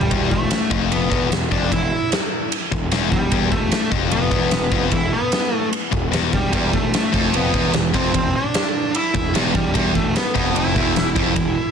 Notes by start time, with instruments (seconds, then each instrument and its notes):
Already playing: lead electric guitar G3
0.01 floor tom
0.11 picked electric bass E1, distorted electric guitar E2, kick, ride bell
0.31 picked electric bass E1, distorted electric guitar E2, lead electric guitar A3, kick
0.51 snare, ride bell
0.71 picked electric bass F1, distorted electric guitar F2, kick
0.92 lead electric guitar B3, ride bell
1.10 picked electric bass E1, distorted electric guitar E2, kick
1.30 picked electric bass E1, distorted electric guitar E2, snare, ride bell
1.51 picked electric bass F1, distorted electric guitar F2, lead electric guitar D4, kick
1.72 picked electric bass E1, distorted electric guitar E2, lead electric guitar E4, kick, ride bell
2.12 snare, ride bell
2.52 ride bell
2.72 picked electric bass E1, distorted electric guitar E2, kick
2.92 picked electric bass E1, distorted electric guitar E2, snare, ride bell
3.12 picked electric bass E1, distorted electric guitar E2, lead electric guitar G3, kick
3.32 picked electric bass E1, distorted electric guitar E2, kick, ride bell
3.51 picked electric bass E1, distorted electric guitar E2, lead electric guitar A3, kick
3.72 snare, ride bell
3.92 picked electric bass F1, distorted electric guitar F2, kick
4.11 lead electric guitar B3, ride bell
4.31 picked electric bass E1, distorted electric guitar E2, kick
4.51 picked electric bass E1, distorted electric guitar E2, snare, ride bell
4.72 picked electric bass F1, distorted electric guitar F2, kick
4.92 picked electric bass E1, distorted electric guitar E2, lead electric guitar E4, kick, ride bell
5.13 lead electric guitar B3
5.32 snare, ride bell
5.56 lead electric guitar A3
5.73 ride bell
5.92 picked electric bass E1, distorted electric guitar E2, kick
6.12 picked electric bass E1, distorted electric guitar E2, snare, ride bell
6.32 picked electric bass E1, distorted electric guitar E2, lead electric guitar G3, kick
6.53 picked electric bass E1, distorted electric guitar E2, lead electric guitar G3, kick, ride bell
6.73 picked electric bass E1, distorted electric guitar E2, lead electric guitar A3, kick
6.94 snare, ride bell
7.12 picked electric bass F1, distorted electric guitar F2, kick
7.34 lead electric guitar B3, ride bell
7.53 picked electric bass E1, distorted electric guitar E2, kick
7.74 picked electric bass E1, distorted electric guitar E2, snare, ride bell
7.93 picked electric bass F1, distorted electric guitar F2, lead electric guitar C4, kick
8.14 picked electric bass E1, distorted electric guitar E2, lead electric guitar C4, kick, ride bell
8.36 lead electric guitar D4
8.54 snare, ride bell
8.95 lead electric guitar E4, ride bell
9.14 picked electric bass E1, distorted electric guitar E2, kick
9.34 picked electric bass E1, distorted electric guitar E2, snare, ride bell
9.54 picked electric bass E1, distorted electric guitar E2, lead electric guitar G3, kick
9.74 picked electric bass E1, distorted electric guitar E2, kick, ride bell
9.94 picked electric bass E1, distorted electric guitar E2, lead electric guitar A3, kick
10.15 lead electric guitar B3, snare, ride bell
10.35 picked electric bass F1, distorted electric guitar F2, lead electric guitar B3, kick
10.56 lead electric guitar E4, ride bell
10.75 picked electric bass E1, distorted electric guitar E2, kick
10.95 picked electric bass E1, distorted electric guitar E2, snare, ride bell
11.15 picked electric bass F1, distorted electric guitar F2, kick
11.36 picked electric bass E1, distorted electric guitar E2, kick, ride bell